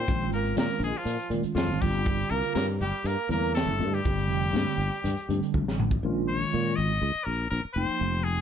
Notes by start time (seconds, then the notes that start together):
Already playing: C4 C5
0.08 A#1 D#3 G#3 C#4 F4, kick, closed hi-hat
0.21 closed hi-hat
0.32 G#1 A#3 A#4, closed hi-hat, muted conga
0.45 closed hi-hat
0.56 A#2 A#3 A#4, snare, closed hi-hat, high conga
0.71 closed hi-hat
0.80 A#1, closed hi-hat
0.84 G#3 G#4
0.95 F4, closed hi-hat
0.99 F3
1.05 A#2, closed hi-hat, muted conga
1.20 closed hi-hat
1.30 A#2 D#3 G#3 C#4 F4, closed hi-hat, high conga
1.43 muted fretless electric bass stroke, closed hi-hat
1.55 F2 F3 F4, snare, closed hi-hat, high conga
1.67 G#1, closed hi-hat
1.81 G1 D3 G3 C4 F4 G4, kick, open hi-hat, low conga
1.94 closed hi-hat
2.06 kick, closed hi-hat, muted conga
2.18 closed hi-hat
2.30 C2 A#3 A#4, closed hi-hat
2.43 closed hi-hat
2.55 G2 A#3 A#4, snare, closed hi-hat, high conga
2.81 G1 G3 G4, closed hi-hat, muted conga
3.04 G2 A#3 A#4, closed hi-hat, muted conga
3.29 E2 D3 G3 A#3 C4 E4 A#4, closed hi-hat, high conga
3.43 closed hi-hat
3.55 A3 A4, snare, closed hi-hat
3.66 G1, closed hi-hat
3.79 G2, closed hi-hat, high conga
3.94 G3 G4, closed hi-hat
4.05 G1 D3 G3 C4 G4, kick, closed hi-hat
4.19 closed hi-hat
4.28 F1, closed hi-hat, muted conga
4.43 closed hi-hat
4.53 G2, snare, closed hi-hat, high conga
4.69 closed hi-hat
4.78 G1, closed hi-hat, muted conga
4.93 closed hi-hat
5.04 G2, closed hi-hat, muted conga, low conga
5.17 closed hi-hat
5.29 G2 D3 G3 C4 D4, closed hi-hat, high conga
5.41 muted fretless electric bass stroke, closed hi-hat
5.54 D2, kick, high conga
5.66 A1, snare
5.79 mid tom
5.91 kick
6.03 A#1 D#3 G#3 C#4 F4
6.28 C#5
6.54 A#2
6.76 G#1 D#5
7.01 C#2
7.25 A#1 A#4
7.50 A#1 A#4
7.65 muted fretless electric bass stroke
7.74 F1 F3 A#3 D#4 C5 G5
8.01 F1
8.24 G#4